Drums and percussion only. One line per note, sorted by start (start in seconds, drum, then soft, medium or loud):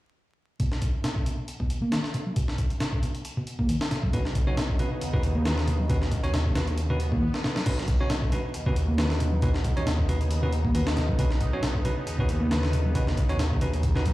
0.60 kick loud
0.60 closed hi-hat medium
0.72 snare soft
0.82 kick medium
0.82 closed hi-hat medium
1.04 snare loud
1.04 closed hi-hat medium
1.16 kick medium
1.26 closed hi-hat medium
1.48 closed hi-hat medium
1.60 kick medium
1.70 closed hi-hat medium
1.92 snare loud
1.92 closed hi-hat medium
2.04 snare soft
2.14 closed hi-hat medium
2.36 kick loud
2.36 closed hi-hat medium
2.48 snare soft
2.58 kick medium
2.58 closed hi-hat medium
2.70 closed hi-hat soft
2.80 snare loud
2.80 closed hi-hat medium
2.93 kick medium
3.03 closed hi-hat medium
3.15 closed hi-hat soft
3.25 closed hi-hat medium
3.47 closed hi-hat medium
3.59 kick medium
3.69 closed hi-hat medium
3.81 snare loud
3.91 snare soft
3.91 closed hi-hat medium
4.03 kick medium
4.13 kick loud
4.13 closed hi-hat medium
4.25 snare soft
4.35 kick medium
4.35 closed hi-hat medium
4.57 snare loud
4.57 closed hi-hat medium
4.69 kick medium
4.79 closed hi-hat medium
5.01 closed hi-hat medium
5.13 kick medium
5.23 closed hi-hat medium
5.45 snare loud
5.45 closed hi-hat medium
5.58 snare soft
5.68 closed hi-hat medium
5.90 kick loud
5.90 closed hi-hat medium
6.02 snare soft
6.12 kick medium
6.12 closed hi-hat medium
6.24 closed hi-hat soft
6.34 snare loud
6.34 closed hi-hat medium
6.46 kick medium
6.55 snare loud
6.55 closed hi-hat medium
6.68 closed hi-hat soft
6.78 closed hi-hat medium
7.00 closed hi-hat medium
7.12 kick medium
7.34 snare medium
7.44 snare medium
7.56 snare medium
7.66 kick loud
7.66 closed hi-hat medium
7.66 crash medium
7.78 snare soft
7.88 kick medium
7.88 closed hi-hat medium
8.10 snare loud
8.10 closed hi-hat medium
8.22 kick medium
8.32 closed hi-hat medium
8.54 closed hi-hat medium
8.66 kick medium
8.76 closed hi-hat medium
8.98 snare loud
8.98 closed hi-hat medium
9.10 snare medium
9.20 closed hi-hat medium
9.42 kick loud
9.42 closed hi-hat medium
9.54 snare soft
9.64 kick medium
9.64 closed hi-hat medium
9.77 closed hi-hat soft
9.87 snare loud
9.87 closed hi-hat medium
9.99 kick medium
10.09 closed hi-hat medium
10.21 closed hi-hat soft
10.31 closed hi-hat medium
10.53 closed hi-hat medium
10.65 kick medium
10.75 closed hi-hat medium
10.87 snare loud
10.97 snare medium
10.97 closed hi-hat medium
11.09 kick medium
11.19 kick loud
11.19 closed hi-hat medium
11.31 snare soft
11.41 kick medium
11.41 closed hi-hat medium
11.63 snare loud
11.63 closed hi-hat medium
11.75 kick medium
11.85 closed hi-hat medium
12.07 closed hi-hat medium
12.19 kick medium
12.29 closed hi-hat medium
12.51 snare loud
12.51 closed hi-hat medium
12.63 snare medium
12.73 closed hi-hat medium
12.95 kick loud
12.95 closed hi-hat medium
13.07 snare soft
13.17 kick medium
13.17 closed hi-hat medium
13.29 closed hi-hat soft
13.39 snare loud
13.39 closed hi-hat medium
13.51 kick medium
13.61 closed hi-hat medium
13.74 closed hi-hat soft
13.83 kick loud
13.83 closed hi-hat medium
13.96 snare soft
14.05 kick medium
14.05 closed hi-hat medium